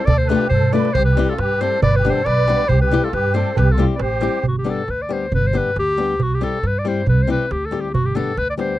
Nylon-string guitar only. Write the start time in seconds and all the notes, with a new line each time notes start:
0.30 A3 D4 F4 A4
0.73 A3 D4 F4 A4
1.17 G3 C4 E4 G4
1.61 G3 C4 E4 G4
2.05 G3 B3 D4 G4
2.48 G3 B3 D4 G4
2.91 G3 C4 E4 G4
3.34 G3 C4 E4 G4
3.78 G3 C4 E4 G4
4.21 G3 C4 E4 G4
4.64 G3 B3 D4 G4
5.09 G3 B3 D4 G4
5.53 G3 B3 D4 G4
5.97 G3 B3 D4 G4
6.41 G3 C4 E4 G4
6.85 G3 C4 E4 G4
7.27 G3 C4 E4 G4
7.71 G3 C4 E4 G4
8.15 G3 B3 D4 G4
8.57 G3 B3 D4 G4